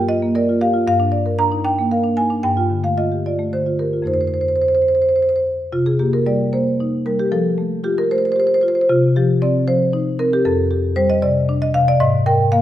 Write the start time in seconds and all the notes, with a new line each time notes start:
Already playing: G2
0.08 F4 D#5
0.23 A#3
0.35 A#4 D5
0.49 F4
0.61 G4 F5
0.74 F4
0.87 G2 F5
1.00 D4
1.12 D5
1.26 A#4
1.39 D4 A#5
1.52 D#4
1.64 D4 G5
1.79 A#3
1.91 A#4 F5
2.04 D4
2.17 D#4 G#5
2.30 D4
2.43 G2 G5
2.57 F4
2.70 D3
2.84 A3 F5
2.97 F4 D#5
3.12 G4
3.26 F4 D5
3.39 A3
3.53 D3 C5
3.66 F4
3.79 G4 A#4
3.93 F4
4.02 F2 A3 D#4
4.07 C5
4.14 C5
4.21 C5
4.27 C5
4.34 C5
4.41 C5
4.48 C5
4.56 C5
4.62 C5
4.68 C5
4.75 C5
4.82 C5
4.88 C5
4.95 C5
5.02 C5
5.09 C5
5.16 C5
5.22 C5
5.29 C5
5.36 C5
5.72 C3 F4
5.86 G#4
5.99 A#3 G4
6.13 A#4
6.26 G3 D5
6.53 A#3 C5
6.80 D#4
7.06 G3 A#4
7.19 G4
7.32 F3 A4
7.58 A3
7.84 F4 G4
7.98 A#4
8.11 A3 C5
8.18 C5
8.25 C5
8.32 C5
8.36 G4 C5
8.47 C5
8.54 C5
8.61 F4 C5
8.68 C5
8.75 C5
8.81 C5
8.89 C3 F4
9.16 F3 G4
9.42 C4 D5
9.68 F3 C5
9.93 D#4
10.19 C4 A#4
10.33 G4
10.45 F2 A4
10.71 G4
10.96 G3 C5
11.10 D#5
11.22 C3 D5
11.49 D4
11.62 D#5
11.74 C3 F5
11.88 D5
12.00 G#2 D#5
12.26 A#4 G5
12.52 A#3 F5